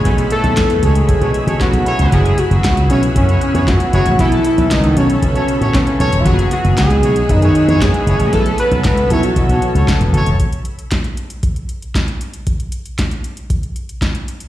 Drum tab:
HH |xxxxxxxxxxxxxxxx|xxxxxxxxxxxxxxxx|xxxxxxxxxxxxxxxx|xxxxxxxxxxxxxxxx|
CP |----x-------x---|----x-------x---|----x-------x---|----x-------x---|
SD |----o-------o---|----o-------o---|----o-------o---|----o-------o---|
BD |o---o---o---o---|o---o---o---o---|o---o---o---o---|o---o---o---o---|

HH |xxxxxxxxxxxxxxxx|xxxxxxxxxxxxxxxx|xxxxxxxxxxxxxxxx|
CP |----x-------x---|----x-------x---|----x-------x---|
SD |----o-------o---|----o-------o---|----o-------o---|
BD |o---o---o---o---|o---o---o---o---|o---o---o---o---|